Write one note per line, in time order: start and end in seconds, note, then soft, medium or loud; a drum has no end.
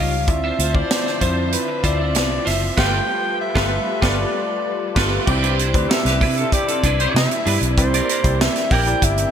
0.00 0.28 C#2 medium
0.00 0.30 G3 medium
0.00 0.30 D#4 medium
0.00 0.14 F4 medium
0.00 0.28 F4 medium
0.00 0.13 G4 medium
0.00 0.30 C#5 medium
0.00 0.12 D#5 medium
0.00 0.31 F5 medium
0.12 muted clean electric guitar stroke soft
0.27 0.50 D2 loud
0.27 2.75 D3 medium
0.27 5.23 F3 medium
0.27 0.66 C4 medium
0.27 2.75 C4 medium
0.27 0.66 E4 medium
0.27 2.42 F4 medium
0.27 0.67 F4 medium
0.27 2.42 A4 medium
0.27 2.42 C5 medium
0.27 0.67 D5 medium
0.27 2.75 E5 medium
0.27 0.77 E5 loud
0.27 muted clean electric guitar stroke soft
0.27 kick loud
0.27 closed hi-hat medium
0.44 0.58 F4 medium
0.44 0.59 C5 medium
0.44 0.60 E5 medium
0.59 0.81 D2 loud
0.59 0.76 F4 medium
0.59 0.75 C5 medium
0.59 0.74 F5 medium
0.59 closed hi-hat medium
0.75 1.13 C4 medium
0.75 1.13 E4 medium
0.75 1.14 F4 medium
0.75 1.23 D5 medium
0.75 1.14 D5 medium
0.75 muted clean electric guitar stroke medium
0.75 kick medium
0.91 snare loud
0.91 closed hi-hat medium
1.06 muted clean electric guitar stroke soft
1.06 snare soft
1.21 1.55 F2 medium
1.21 1.73 C4 medium
1.21 1.73 E4 medium
1.21 1.43 F4 medium
1.21 1.74 F4 medium
1.21 1.37 C5 medium
1.21 1.55 C5 medium
1.21 1.29 C5 medium
1.21 1.36 E5 medium
1.21 kick medium
1.21 closed hi-hat medium
1.29 1.77 D5 medium
1.37 muted clean electric guitar stroke soft
1.52 1.86 B4 medium
1.52 muted clean electric guitar stroke soft
1.52 closed hi-hat medium
1.69 muted clean electric guitar stroke soft
1.83 2.16 D2 medium
1.83 2.09 C4 medium
1.83 2.10 E4 medium
1.83 2.00 F4 medium
1.83 2.10 F4 medium
1.83 2.00 C5 medium
1.83 2.10 D5 medium
1.83 2.49 D5 medium
1.83 1.99 E5 medium
1.83 kick medium
1.83 closed hi-hat medium
2.00 2.14 F4 soft
2.00 2.14 C5 medium
2.00 2.15 E5 medium
2.15 2.38 C2 medium
2.15 2.67 C4 medium
2.15 2.67 E4 medium
2.15 2.67 F4 medium
2.15 2.68 D5 medium
2.15 muted clean electric guitar stroke soft
2.15 snare loud
2.15 closed hi-hat loud
2.31 muted clean electric guitar stroke soft
2.45 2.69 F#1 medium
2.45 2.67 F4 medium
2.45 2.62 C5 medium
2.45 2.60 E5 medium
2.45 2.80 E5 medium
2.45 snare soft
2.45 open hi-hat medium
2.61 muted clean electric guitar stroke medium
2.77 2.99 G1 loud
2.77 5.25 G3 medium
2.77 2.99 A3 loud
2.77 2.93 D4 medium
2.77 2.99 F4 loud
2.77 2.93 F4 loud
2.77 2.99 F4 medium
2.77 2.99 G4 loud
2.77 5.25 A4 medium
2.77 2.99 A4 loud
2.77 2.93 B4 loud
2.77 2.98 B4 loud
2.77 5.25 B4 medium
2.77 2.99 B4 loud
2.77 3.40 G5 loud
2.77 kick loud
2.77 snare medium
2.77 crash medium
3.41 4.06 E5 medium
3.55 3.77 G1 medium
3.55 3.76 A3 loud
3.55 3.72 D4 loud
3.55 3.76 F4 loud
3.55 3.77 F4 loud
3.55 3.72 F4 medium
3.55 3.77 G4 loud
3.55 3.77 A4 loud
3.55 3.77 B4 loud
3.55 3.72 B4 loud
3.55 3.77 B4 medium
3.55 kick loud
3.55 snare loud
4.00 4.24 G1 loud
4.00 4.22 A3 loud
4.00 4.17 D4 loud
4.00 4.17 F4 loud
4.00 4.23 F4 medium
4.00 4.24 F4 medium
4.00 4.23 G4 loud
4.00 4.24 A4 loud
4.00 4.18 B4 loud
4.00 4.24 B4 medium
4.00 4.25 B4 medium
4.00 kick loud
4.00 snare loud
4.05 4.97 D5 medium
4.95 5.17 G1 loud
4.95 5.16 A3 medium
4.95 5.12 D4 medium
4.95 5.17 F4 medium
4.95 5.12 F4 medium
4.95 5.18 F4 loud
4.95 5.17 G4 medium
4.95 5.18 A4 loud
4.95 5.12 B4 loud
4.95 5.17 B4 medium
4.95 5.18 B4 loud
4.95 kick loud
4.95 snare loud
4.95 crash medium
5.26 5.74 C2 loud
5.26 9.31 C3 medium
5.26 5.66 C4 medium
5.26 7.74 C4 medium
5.26 5.52 D4 loud
5.26 9.31 D4 medium
5.26 5.52 E4 loud
5.26 5.66 E4 medium
5.26 9.31 E4 medium
5.26 5.66 G4 medium
5.26 5.52 G4 loud
5.26 5.66 C5 medium
5.26 5.92 C5 medium
5.26 5.66 D5 medium
5.26 muted clean electric guitar stroke soft
5.26 kick loud
5.26 crash medium
5.43 5.58 D4 medium
5.43 5.59 E4 medium
5.43 5.60 B4 medium
5.43 closed hi-hat medium
5.59 5.76 D4 medium
5.59 5.75 E4 medium
5.59 5.74 C5 medium
5.59 closed hi-hat medium
5.73 5.86 D2 medium
5.73 6.77 C4 medium
5.73 5.86 E4 medium
5.73 6.78 E4 medium
5.73 5.86 G4 medium
5.73 6.78 G4 medium
5.73 5.86 B4 medium
5.73 6.78 B4 medium
5.73 6.78 D5 medium
5.73 muted clean electric guitar stroke soft
5.73 kick loud
5.73 closed hi-hat medium
5.88 6.01 D4 medium
5.88 6.01 F4 medium
5.88 6.01 A4 medium
5.88 6.55 E5 loud
5.88 snare loud
6.05 6.23 C2 medium
6.05 6.18 E4 medium
6.05 6.18 G4 medium
6.05 6.18 B4 medium
6.05 muted clean electric guitar stroke soft
6.05 snare soft
6.05 closed hi-hat medium
6.21 6.44 C3 medium
6.21 6.43 D4 medium
6.21 6.38 E4 medium
6.21 6.36 B4 loud
6.21 kick medium
6.21 open hi-hat medium
6.37 6.50 D4 medium
6.37 6.50 F4 medium
6.37 6.50 A4 medium
6.37 muted clean electric guitar stroke soft
6.37 closed hi-hat soft
6.52 6.64 D4 medium
6.52 6.65 E4 medium
6.52 6.65 G4 loud
6.52 7.15 D5 medium
6.52 muted clean electric guitar stroke soft
6.52 kick loud
6.52 closed hi-hat loud
6.67 6.80 D4 medium
6.67 6.80 F4 medium
6.67 6.80 A4 medium
6.67 muted clean electric guitar stroke soft
6.67 closed hi-hat medium
6.83 7.06 C2 medium
6.83 7.01 D4 loud
6.83 7.00 E4 loud
6.83 6.99 B4 loud
6.83 kick medium
6.83 closed hi-hat medium
7.00 7.14 D4 soft
7.00 7.12 E4 medium
7.00 7.15 E4 medium
7.00 7.12 G4 medium
7.00 7.16 B4 medium
7.00 7.12 C5 loud
7.00 closed hi-hat soft
7.14 7.26 C3 medium
7.14 7.59 E5 medium
7.14 muted clean electric guitar stroke soft
7.14 snare loud
7.31 muted clean electric guitar stroke soft
7.31 closed hi-hat soft
7.46 7.57 G2 medium
7.46 7.72 C4 medium
7.46 7.68 D4 medium
7.46 7.72 E4 medium
7.46 7.63 E4 medium
7.46 7.72 G4 medium
7.46 7.72 B4 medium
7.46 7.61 B4 loud
7.46 7.72 D5 medium
7.46 open hi-hat medium
7.61 7.78 B1 medium
7.61 muted clean electric guitar stroke soft
7.61 closed hi-hat medium
7.77 8.00 C2 loud
7.77 9.31 A#3 medium
7.77 8.16 C4 medium
7.77 8.16 E4 medium
7.77 8.16 G4 medium
7.77 8.17 A#4 medium
7.77 8.43 C5 medium
7.77 8.17 D5 medium
7.77 muted clean electric guitar stroke soft
7.77 kick loud
7.77 closed hi-hat medium
7.94 8.08 E4 medium
7.94 8.09 A#4 medium
7.94 8.11 D5 medium
7.94 closed hi-hat medium
8.09 8.26 E4 medium
8.09 8.25 A#4 medium
8.09 8.24 D5 medium
8.09 closed hi-hat medium
8.24 8.47 C2 loud
8.24 8.76 C4 medium
8.24 8.76 E4 medium
8.24 8.76 G4 medium
8.24 8.76 A#4 medium
8.24 8.76 D5 medium
8.24 muted clean electric guitar stroke medium
8.24 kick loud
8.24 closed hi-hat medium
8.41 8.74 E5 loud
8.41 snare loud
8.56 muted clean electric guitar stroke soft
8.56 snare soft
8.56 closed hi-hat medium
8.71 8.93 A#1 medium
8.71 8.93 E4 medium
8.71 8.88 A#4 medium
8.71 8.87 D5 medium
8.71 9.06 G5 loud
8.71 kick medium
8.71 open hi-hat medium
8.86 9.31 C4 medium
8.86 9.31 E4 medium
8.86 9.31 G4 medium
8.86 9.31 A#4 medium
8.86 9.31 D5 medium
8.86 muted clean electric guitar stroke soft
8.86 closed hi-hat soft
9.02 9.25 G1 medium
9.02 9.31 E5 loud
9.02 muted clean electric guitar stroke soft
9.02 kick medium
9.02 closed hi-hat loud
9.18 muted clean electric guitar stroke medium
9.18 closed hi-hat medium